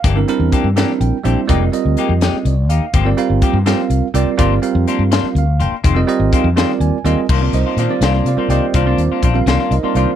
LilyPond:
<<
  \new Staff \with { instrumentName = "Tine electric piano" } { \time 6/8 \key c \minor \tempo 4. = 83 << { r2 g''8 e''8 | r2 d''8 f''8 | r2. | r2 f''8 g''8 |
r2 aes''4 | r8 <ees' bes' c'' ees''>8 <f' c'' d'' f''>4 <f' c'' d'' f''>8 <g' d'' ees'' g''>8 | <f' c'' d'' f''>4. r8 <ees' bes' c'' ees''>8 <f' c'' d'' f''>8 | } \\ { r16 <g c' d' e' bes'>16 <g c' d' e' bes'>8. r16 <g c' d' e' bes'>8. r16 <g c' d' e' c''>8 | <g c' f' bes' ees''>8 <g c' f' bes' ees''>4.~ <g c' f' bes' ees''>16 r8. | r16 <g c' f' bes' d''>16 <g c' f' bes' f''>8. r16 <g c' f' bes' f''>8. r16 <g c' f' bes' d''>8 | <g c' f' bes' d''>8 <g c' f' bes' f''>4.~ <g c' f' bes' f''>16 r8. |
r16 <g c' f' bes' ees''>16 <g c' f' bes' ees''>8. r16 <g c' f' bes' d''>8. r16 <g c' f' bes' ees''>8 | r16 <g c' f' bes' d''>8. r16 <g c' f' bes' d''>8. r16 <g c' f' bes' c''>8. | r16 <g c' f' bes' d''>8. r16 <g c' f' bes' f''>8. r16 <g c' f' bes' d''>8. | } >> }
  \new Staff \with { instrumentName = "Clean electric guitar" } { \time 6/8 \key c \minor <e bes d' g'>16 r8. <e bes d' g'>16 r16 <e bes d' g'>16 r8. <bes d' g'>16 r16 | <aes bes ees' g'>16 r8. <aes bes ees' g'>16 r16 <aes bes ees' g'>16 r8. <bes ees' g'>16 r16 | <f bes c' g'>16 r8. <f bes c' g'>16 r16 <f bes c' g'>16 r8. <bes c' g'>16 r16 | <f bes d' f'>16 r8. <f bes d' f'>16 r16 <f bes d' f'>16 r8. <bes d' f'>16 r16 |
<ees aes c' f'>16 r8. <ees aes c' f'>16 r16 <ees aes c' f'>16 r8. <aes c' f'>16 r16 | <ees bes d' f'>16 <bes d' f'>16 r16 <bes d' f'>16 <ees bes d' f'>16 r16 <ees bes d' f'>16 <bes d' f'>16 r16 <bes d' f'>16 <ees bes d' f'>16 r16 | <ees bes d' f'>16 <bes d' f'>16 r16 <bes d' f'>16 <ees bes d' f'>16 r16 <ees bes d' f'>16 <bes d' f'>16 r16 <bes d' f'>16 <ees bes d' f'>16 r16 | }
  \new Staff \with { instrumentName = "Fretless electric bass" } { \clef bass \time 6/8 \key c \minor g,,8 r16 e,16 r16 g,8 r16 bes,,16 r16 bes,,16 r16 | f,,8 r16 d,16 r16 f,8 r16 c,8 ees,16 r16 | g,,8 r16 g,,16 r16 g,8 r16 c,16 r16 c,16 r16 | g,,8 r16 f,16 r16 g,8 r16 d,8 f,,16 r16 |
f,,8 r16 aes,,16 r16 f,8 r16 ees,16 r16 ees,16 r16 | c,8 c,16 r16 bes,16 r16 c,8 c16 r16 c,16 r16 | c,8 ees,16 r16 bes,,8 c,16 r16 c,16 r16 c,16 r16 | }
  \new DrumStaff \with { instrumentName = "Drums" } \drummode { \time 6/8 <hh bd>8 hh8 <hh bd>8 <hh sn>8 hh8 hh8 | <hh bd>8 hh8 hh8 <hh sn>8 hh8 hh8 | <hh bd>8 hh8 <hh bd>8 <hh sn>8 hh8 hh8 | <hh bd>8 hh8 hh8 <hh sn>8 hh8 hh8 |
<hh bd>8 hh8 <hh bd>8 <hh sn>8 hh8 hh8 | <cymc bd>8 hh8 hh8 <hh sn>8 hh8 hh8 | <hh bd>8 hh8 <hh bd>8 <hh sn>8 hh8 hh8 | }
>>